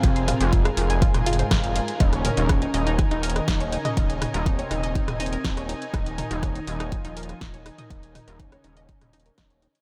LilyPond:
<<
  \new Staff \with { instrumentName = "String section" } { \time 4/4 \key ees \mixolydian \tempo 4 = 122 <f' aes' bes' aes''>1 | <ees' ees'' aes''>1~ | <ees' ees'' aes''>1~ | <ees' ees'' aes''>1~ |
<ees' ees'' aes''>1 | }
  \new Staff \with { instrumentName = "Synth arpeggio sound" } { \time 4/4 \key ees \mixolydian f'16 c'''16 f'16 c''16 f'16 f''16 f'16 aes''16 f'16 c'''16 f'16 c''16 f'16 f''16 f'16 r16 | ees'16 r16 bes'16 ees'16 des''16 ees'16 ees''16 ees'16 aes''16 ees'16 bes'16 r16 ees'16 des''16 ees'16 ees''16 | ees'16 aes''16 ees'16 bes'16 ees'16 des''16 ees'16 ees''16 ees'16 aes''16 ees'16 bes'16 ees'16 des''16 ees'16 r16 | ees'16 r16 bes'16 ees'16 des''16 ees'16 ees''16 ees'16 aes''16 ees'16 bes'16 r16 ees'16 des''16 ees'16 ees''16 |
ees'16 aes''16 ees'16 bes'16 ees'16 des''16 ees'16 ees''16 ees'16 aes''16 ees'16 bes'16 ees'16 des''16 ees'16 r16 | }
  \new Staff \with { instrumentName = "Analog polysynth" } { \clef bass \time 4/4 \key ees \mixolydian <c c'>4 <aes, aes>2. | <des des'>2 <ees ees'>4. <des des'>8~ | <des des'>4 <c c'>2. | <ees ees'>2 <f f'>4. <ees ees'>8~ |
<ees ees'>4 <des des'>2. | }
  \new Staff \with { instrumentName = "Analog synth bass" } { \clef bass \time 4/4 \key ees \mixolydian f,,8 r16 f,,8 r16 f,,8 r16 f,,8 r16 f,,8 r8 | ees,,8 r16 ees,,8 r16 ees,,8 r16 ees,,8 r16 ees,,8 r8 | ees,,8 r16 ees,,8 r16 ees,,8 r16 ees,,8 r16 ees,,8 r8 | ees,,8 r16 ees,,8 r16 ees,,8 r16 ees,,8 r16 ees,,8 r8 |
ees,,8 r16 ees,,8 r16 ees,,8 r16 ees,,8 r16 ees,,8 r8 | }
  \new DrumStaff \with { instrumentName = "Drums" } \drummode { \time 4/4 <hh bd>16 hh16 <hho ss toml>16 hh16 <hh bd>16 <hh ss>16 hho16 hh16 <hh bd>16 <hh ss toml>16 hho32 hh32 hh16 <hh bd ss sn>16 hh16 hho16 hh16 | <hh bd>16 <hh ss>16 <hho toml>16 hh16 <hh bd ss>16 hh16 hho16 hh16 <hh bd ss>16 hh16 hho32 hh32 <hh ss>16 <hh bd sn>16 hh16 hho16 <hh ss toml>16 | <hh bd>16 hh16 <hho ss toml>16 hh16 <hh bd>16 hh16 <hho ss>16 hh16 <hh bd>16 <hh ss toml>16 hho32 hh32 hh16 <hh bd sn>16 <hh ss>16 hho16 hh16 | <hh bd ss>16 hh16 <hho toml>16 hh16 <hh bd ss>16 hh16 hho16 <hh ss>16 <hh bd>16 hh16 hho32 hh32 <hh ss>16 <hh bd sn>16 hh16 <hho ss>16 <hh toml>16 |
<hh bd>16 hh16 <hho ss toml>16 hh16 <hh bd>16 <hh ss>16 hho16 hh16 <hh bd>16 <hh ss toml>16 hho32 hh32 hh16 <hh bd ss sn>16 hh16 hho16 hh16 | }
>>